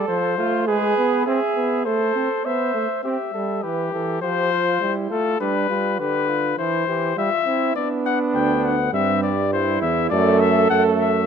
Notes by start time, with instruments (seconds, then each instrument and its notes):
Already playing: flugelhorn A4
0.08 trombone F3, cornet C5
0.38 trombone A3, flugelhorn F4
0.67 trombone G#3, flugelhorn G#4, cornet B4
0.97 trombone B3
1.26 trombone C4, flugelhorn G#4, cornet E5
1.56 trombone B3
1.85 trombone A3, flugelhorn A4, cornet C5
2.15 trombone C4
2.45 trombone B3, flugelhorn C5, cornet E5
2.74 trombone A3
3.03 trombone C4, flugelhorn G4, cornet E5
3.34 trombone G3, flugelhorn A4
3.62 trombone E3, cornet G4, flugelhorn B4
3.92 trombone E3, flugelhorn A4
4.21 trombone F3, flugelhorn G4, cornet C5
4.52 flugelhorn F4
4.81 trombone G3, flugelhorn E4
5.10 trombone A3, flugelhorn F4, cornet A4
5.40 trombone G3, flugelhorn D4, cornet B4
5.69 trombone G3, flugelhorn F4
5.99 trombone D3, flugelhorn G4, cornet B4
6.29 flugelhorn F4
6.57 trombone E3, flugelhorn E4, cornet C5
6.87 trombone E3, flugelhorn G4
7.17 trombone G3, flugelhorn F4, cornet E5
7.46 trombone C4, flugelhorn E4
7.75 trombone B3, flugelhorn D4, cornet D5
8.06 cornet F#5
8.34 tuba D2, cornet G5
8.64 cornet F#5
8.93 tuba G2, trombone G3, flugelhorn C4, cornet E5
9.23 cornet D5
9.52 flugelhorn E4, cornet C5
9.82 tuba E2, cornet E5
10.10 tuba F#2, trombone A3, flugelhorn A4, cornet D5
10.40 cornet E5
10.70 tuba F#2, trombone A3, cornet F#5
10.99 cornet E5